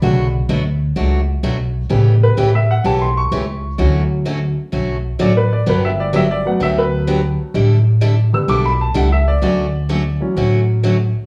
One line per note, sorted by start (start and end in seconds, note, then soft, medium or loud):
0.00 0.40 B1 loud
0.00 0.26 B2 medium
0.00 0.39 C#3 soft
0.00 0.38 D3 medium
0.00 0.26 F#3 medium
0.00 0.39 A3 soft
0.00 0.26 A3 medium
0.00 0.26 D4 medium
0.00 0.26 F#4 medium
0.00 0.31 D5 medium
0.00 0.32 B5 medium
0.49 0.89 D2 medium
0.49 0.62 B2 medium
0.49 0.62 F#3 medium
0.49 0.62 A3 medium
0.49 0.62 D4 medium
0.49 0.62 F#4 medium
0.96 1.36 C#2 medium
0.96 1.19 B2 medium
0.96 1.20 F#3 medium
0.96 1.20 A3 medium
0.96 1.20 D4 medium
0.96 1.20 F#4 medium
1.43 1.83 B1 medium
1.43 1.56 B2 medium
1.43 1.56 F#3 medium
1.43 1.56 A3 medium
1.43 1.56 D4 medium
1.43 1.56 F#4 medium
1.89 2.28 A1 medium
1.89 2.13 C#3 medium
1.89 2.65 C#3 medium
1.89 2.13 E3 medium
1.89 2.65 G3 soft
1.89 2.13 A3 medium
1.89 2.66 B3 medium
1.89 2.14 C#4 medium
1.89 2.14 G4 medium
2.23 2.53 B4 loud
2.37 2.78 A1 medium
2.37 2.50 C#3 medium
2.37 2.50 E3 medium
2.37 2.50 A3 medium
2.37 2.50 C#4 medium
2.37 2.50 G4 medium
2.55 2.69 E5 medium
2.71 2.85 F#5 loud
2.84 3.24 B1 medium
2.84 3.08 C#3 medium
2.84 3.08 E3 medium
2.84 3.08 A3 medium
2.84 3.08 C#4 medium
2.84 3.08 G4 medium
2.84 3.00 A5 medium
3.02 3.16 C6 medium
3.17 4.08 C#6 medium
3.32 3.71 C#2 medium
3.32 3.44 C#3 medium
3.32 3.44 E3 medium
3.32 3.44 A3 medium
3.32 3.44 C#4 medium
3.32 3.44 G4 medium
3.78 4.54 D2 medium
3.78 4.01 D3 medium
3.78 4.53 E3 medium
3.78 4.02 F#3 medium
3.78 4.54 F#3 soft
3.78 4.02 A3 medium
3.78 4.02 C#4 medium
3.78 4.54 C#4 medium
3.78 4.02 F#4 medium
4.25 4.38 D3 medium
4.25 4.38 F#3 medium
4.25 4.38 A3 medium
4.25 4.38 C#4 medium
4.25 4.38 F#4 medium
4.72 5.13 B1 medium
4.72 4.95 D3 medium
4.72 4.95 F#3 medium
4.72 4.96 A3 medium
4.72 4.96 C#4 medium
4.72 4.96 F#4 medium
5.19 5.59 A1 medium
5.19 5.31 D3 medium
5.19 5.32 F#3 medium
5.19 5.32 A3 medium
5.19 5.32 C#4 medium
5.19 5.32 F#4 medium
5.19 5.36 D5 medium
5.37 5.51 B4 medium
5.53 5.67 D5 medium
5.66 6.42 G1 loud
5.66 5.89 D3 medium
5.66 5.89 F#3 medium
5.66 5.90 B3 medium
5.66 5.90 D4 medium
5.66 5.90 G4 medium
5.66 5.83 B4 medium
5.85 5.99 E5 medium
6.00 6.14 D5 loud
6.13 6.25 D3 medium
6.13 6.25 F#3 medium
6.13 6.26 B3 medium
6.13 6.26 D4 medium
6.13 6.26 G4 medium
6.13 6.30 E5 loud
6.31 6.45 D5 loud
6.45 7.50 F#3 medium
6.45 7.51 A3 soft
6.45 7.51 B3 medium
6.45 6.61 F#5 medium
6.60 7.35 D2 medium
6.60 6.83 D3 soft
6.60 6.83 F#3 medium
6.60 6.83 B3 medium
6.60 6.83 D4 medium
6.60 6.84 G4 medium
6.60 6.77 E5 loud
6.78 7.23 B4 loud
7.07 7.19 D3 medium
7.07 7.19 F#3 medium
7.07 7.19 B3 medium
7.07 7.20 D4 medium
7.07 7.20 G4 medium
7.54 8.29 A1 medium
7.54 7.77 D3 medium
7.54 7.77 G3 medium
7.54 7.78 D4 medium
7.54 7.78 E4 medium
7.54 7.78 A4 medium
8.01 8.13 D3 medium
8.01 8.13 G3 medium
8.01 8.14 D4 medium
8.01 8.14 E4 medium
8.01 8.14 A4 medium
8.33 8.59 D3 medium
8.33 8.60 G3 soft
8.33 8.60 B3 medium
8.33 8.49 E6 medium
8.48 8.88 B1 medium
8.48 8.71 D3 medium
8.48 8.71 G3 medium
8.48 8.72 D4 medium
8.48 8.72 E4 medium
8.48 8.72 A4 medium
8.48 8.64 D6 medium
8.66 8.80 B5 medium
8.81 8.96 A5 medium
8.94 9.35 C#2 medium
8.94 9.07 D3 medium
8.94 9.07 G3 medium
8.94 9.07 D4 medium
8.94 9.07 E4 medium
8.94 9.07 A4 medium
8.94 9.11 F#5 medium
9.12 9.27 E5 medium
9.28 9.42 D5 medium
9.42 10.17 D2 medium
9.42 9.65 D3 medium
9.42 9.65 F#3 medium
9.42 9.65 A3 medium
9.42 9.66 C#4 medium
9.42 9.66 F#4 medium
9.42 10.34 D5 loud
9.89 10.01 D3 medium
9.89 10.02 F#3 medium
9.89 10.02 A3 medium
9.89 10.02 C#4 medium
9.89 10.02 F#4 medium
10.20 10.80 E3 medium
10.20 10.80 F#3 medium
10.20 10.81 C#4 medium
10.36 11.12 A1 medium
10.36 10.60 D3 medium
10.36 10.60 F#3 medium
10.36 10.60 A3 medium
10.36 10.60 C#4 medium
10.36 10.60 F#4 medium
10.83 10.96 D3 medium
10.83 10.96 F#3 medium
10.83 10.96 A3 medium
10.83 10.96 C#4 medium
10.83 10.96 F#4 medium